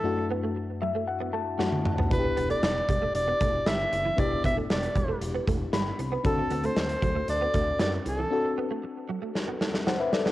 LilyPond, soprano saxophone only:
\new Staff \with { instrumentName = "Soprano saxophone" } { \time 4/4 \key d \mixolydian \tempo 4 = 116 a'8 r2. r8 | b'8. d''4~ d''16 d''4 e''4 | d''8 e''8 d''4 r2 | a'8. c''4~ c''16 d''4 d''8 a'8~ |
a'8 r2. r8 | }